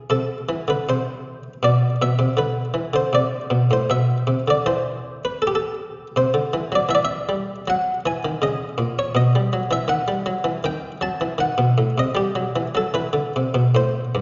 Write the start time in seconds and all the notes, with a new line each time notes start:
Already playing: G#4
0.10 C3 A4
0.49 E3
0.68 D3 B4
0.89 C3 C5
1.63 B2 D5
2.02 B2 E5
2.19 C3
2.37 D3 B4
2.74 E3
2.94 D3 C5
3.13 C3 D5
3.50 B2
3.71 A2 C5
3.90 B2 E5
4.27 C3
4.48 D3 D5
4.66 E3 C5
5.25 B4
5.42 A4
5.47 G4
5.55 A4
6.16 C3 C5
6.34 D3
6.53 E3
6.72 F#3 D5
6.89 E3 E5
6.95 D5
7.05 E5
7.29 G3
7.68 F#3 F#5
8.06 E3 G#5
8.25 D#3
8.42 C#3 D#5
8.78 A#2
8.99 C#5
9.15 B2 D#5
9.35 G3
9.53 F#3
9.71 E3 E5
9.88 D#3 F#5
10.08 G3
10.26 F#3
10.44 E3
10.64 D#3 G5
11.01 F#3 A5
11.21 E3
11.38 D#3 F#5
11.58 B2
11.78 A2
11.98 C3 D#5
12.15 G3 G4
12.35 F#3
12.56 E3
12.75 F#3 A4
12.94 E3 B4
13.13 D3
13.36 C3
13.54 B2
13.75 A2 C5
14.15 G2